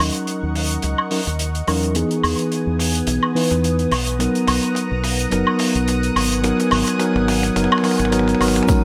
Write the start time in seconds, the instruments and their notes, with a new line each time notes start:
Already playing: tine electric piano F#3 C#4 D#4 A#4, analog synth pad A#4 D#5 F#5 C#6
0.00 open hi-hat, high woodblock
0.14 closed hi-hat
0.27 closed hi-hat
0.43 fingered electric bass D#2
0.55 open hi-hat, mid tom
0.71 closed hi-hat
0.82 fingered electric bass C#2, closed hi-hat, mid tom
0.98 high woodblock
1.11 tine electric piano F#3 C#4 D#4 A#4, open hi-hat
1.27 fingered electric bass D#2, closed hi-hat, mid tom
1.39 closed hi-hat
1.55 closed hi-hat
1.67 fingered electric bass E2, tine electric piano F#3 C#4 D#4 A#4, open hi-hat, mid tom, high woodblock
1.83 closed hi-hat
1.94 tine electric piano E3 B3 D#4 G#4, analog synth pad B3 G#5 D#6, closed hi-hat, mid tom
2.11 closed hi-hat
2.23 fingered electric bass E2, open hi-hat, high woodblock
2.39 closed hi-hat
2.52 closed hi-hat
2.67 fingered electric bass E2
2.79 open hi-hat, mid tom
2.95 closed hi-hat
3.07 fingered electric bass B1, closed hi-hat, mid tom
3.23 high woodblock
3.35 tine electric piano E3 B3 D#4 B4, open hi-hat
3.51 fingered electric bass E2, closed hi-hat, mid tom
3.64 closed hi-hat
3.79 closed hi-hat
3.91 fingered electric bass B1, analog synth pad F#5 A#5, open hi-hat, mid tom, high woodblock
4.07 closed hi-hat
4.19 tine electric piano F#3 B3 D#4 A#4, closed hi-hat, mid tom
4.35 closed hi-hat
4.47 fingered electric bass B1, open hi-hat, mid tom, high woodblock
4.63 closed hi-hat
4.75 closed hi-hat, mid tom
4.91 fingered electric bass B1
5.04 open hi-hat, mid tom
5.19 closed hi-hat
5.30 fingered electric bass F#1, tine electric piano F#3 B3 D#4 A#4, closed hi-hat, mid tom
5.47 high woodblock
5.59 open hi-hat, mid tom
5.75 fingered electric bass B1, closed hi-hat
5.88 closed hi-hat, mid tom
6.03 closed hi-hat
6.16 fingered electric bass G#1, analog synth pad G#5, open hi-hat, mid tom, high woodblock
6.32 closed hi-hat
6.43 tine electric piano F#3 B3 D#4 A#4, closed hi-hat, mid tom
6.60 closed hi-hat, mid tom
6.71 fingered electric bass G#1, open hi-hat, mid tom, high woodblock
6.87 closed hi-hat, mid tom
6.99 tine electric piano F#3 B3 D#4 A#4, closed hi-hat, mid tom
7.15 fingered electric bass G#1, mid tom
7.28 open hi-hat, mid tom
7.43 closed hi-hat, mid tom
7.55 fingered electric bass F#1, tine electric piano F#3 B3 D#4 A#4, closed hi-hat, mid tom
7.64 mid tom
7.72 mid tom, high woodblock
7.78 mid tom
7.83 tine electric piano F#3 B3 D#4 A#4, open hi-hat, mid tom
7.91 mid tom
7.99 fingered electric bass G#1, closed hi-hat, mid tom
8.05 mid tom
8.11 tine electric piano F#3 B3 D#4 A#4, closed hi-hat, mid tom
8.19 mid tom
8.28 closed hi-hat, mid tom
8.35 mid tom
8.39 fingered electric bass G#1, tine electric piano F#3 B3 D#4 A#4, open hi-hat, mid tom, high woodblock
8.48 mid tom
8.56 closed hi-hat, mid tom
8.63 mid tom
8.67 tine electric piano F#3 C#4 D#4 A#4, analog synth pad C#5 F#5 A#5 D#6, kick, closed hi-hat, tambourine, high conga, shaker